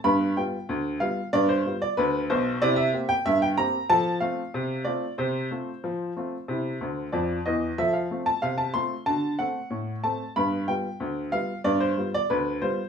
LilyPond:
<<
  \new Staff \with { instrumentName = "Upright piano" } { \time 2/4 \key f \major \tempo 4 = 93 b''8 g''4 f''8 | d''16 c''8 d''16 b'8 c''8 | d''16 e''8 g''16 e''16 g''16 bes''8 | a''8 f''4 d''8 |
c''2~ | c''4 d''8 ees''8 | e''16 f''8 a''16 f''16 a''16 c'''8 | a''8 fis''4 a''8 |
b''8 g''4 f''8 | d''16 c''8 d''16 b'8 c''8 | }
  \new Staff \with { instrumentName = "Upright piano" } { \time 2/4 \key f \major <g, b>8 <g b f'>8 d,8 <g b f'>8 | <g, b>8 <g b f'>8 d,8 <b,, b,>8 | <c e'>8 <bes c' g'>8 g,8 <bes c' g'>8 | <f a'>8 <a c' f'>8 c8 <a c' f'>8 |
c8 <a c' f'>8 f8 <a c' f'>8 | <c e'>8 <d, d>8 <f, f>8 <e, e>8 | <f a'>8 <a c' f'>8 c8 <a c' f'>8 | <d fis'>8 <a c' a'>8 a,8 <a c' a'>8 |
<g, b>8 <g b f'>8 d,8 <g b f'>8 | <g, b>8 <g b f'>8 d,8 <g b f'>8 | }
>>